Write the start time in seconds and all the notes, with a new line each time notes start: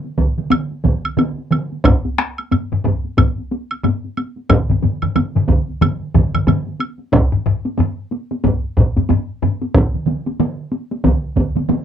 0.05 taiko high
0.18 taiko, taiko mid, taiko high
0.38 taiko mid, taiko high
0.50 taiko mid, taiko high, high woodblock
0.71 taiko high
0.84 taiko, taiko mid, taiko high
1.05 taiko high, high woodblock
1.17 taiko mid, taiko high, high woodblock
1.38 taiko high
1.51 taiko mid, taiko high, high woodblock
1.72 taiko high
1.84 taiko, taiko low-mid, taiko high, high woodblock
2.05 taiko high
2.18 taiko rim, taiko high
2.38 taiko high, high woodblock
2.52 taiko low-mid, taiko high, high woodblock
2.72 taiko low-mid, taiko high
2.84 taiko, taiko low-mid, taiko high
3.05 taiko high
3.17 taiko, taiko low-mid, taiko high, high woodblock
3.38 taiko high
3.51 taiko high
3.71 taiko high, high woodblock
3.84 taiko low-mid, taiko high, high woodblock
4.04 taiko high
4.17 taiko high, high woodblock
4.37 taiko high
4.49 taiko, taiko low-mid, taiko mid, taiko high, high woodblock
4.70 taiko low-mid, taiko mid, taiko high
4.82 taiko low-mid, taiko mid, taiko high
5.02 taiko low-mid, taiko mid, taiko high, high woodblock
5.15 taiko low-mid, taiko mid, taiko high, high woodblock
5.35 taiko low-mid, taiko mid, taiko high
5.48 taiko, taiko low-mid, taiko mid, taiko high
5.69 taiko high
5.81 taiko low-mid, taiko mid, taiko high, high woodblock
6.14 taiko, taiko low-mid, taiko mid, taiko high
6.34 taiko low-mid, taiko mid, taiko high, high woodblock
6.47 taiko low-mid, taiko mid, taiko high, high woodblock
6.67 taiko high
6.80 taiko high, high woodblock
6.99 taiko high
7.12 taiko, taiko low-mid, taiko high
7.33 taiko low-mid
7.46 taiko low-mid
7.65 taiko high
7.78 taiko low-mid, taiko high
8.11 taiko high
8.31 taiko high
8.44 taiko, taiko low-mid, taiko high
8.77 taiko, taiko low-mid
8.97 taiko low-mid, taiko high
9.10 taiko low-mid, taiko high
9.42 taiko low-mid, taiko high
9.62 taiko high
9.75 taiko, taiko mid, taiko high
9.94 taiko mid
10.07 taiko mid, taiko high
10.27 taiko high
10.40 taiko mid, taiko high
10.72 taiko high
10.91 taiko high
11.04 taiko, taiko mid, taiko high
11.36 taiko, taiko mid, taiko high
11.55 taiko mid, taiko high
11.69 taiko mid, taiko high